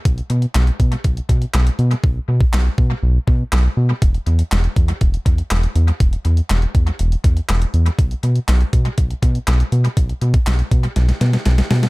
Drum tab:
HH |xxxxxxxxxxxxxxxx|----------------|xxxxxxxxxxxxxxxx|xxxxxxxxxxxxxxxx|
CP |----x-------x---|----x-------x---|----x-------x---|----x-------x---|
SD |----o-------o---|----o-------o---|----o-------o---|----o-------o---|
BD |o-----o-o-o-----|o--o--o---o-----|o-----o-o-o-----|o-----o---o-----|

HH |xxxxxxxxxxxxxxxx|xxxxxxxxxxxxxxox|
CP |----x-------x---|----x-----------|
SD |----o-------o---|----o---oooooooo|
BD |o-----o-o-o-----|o--o--o---------|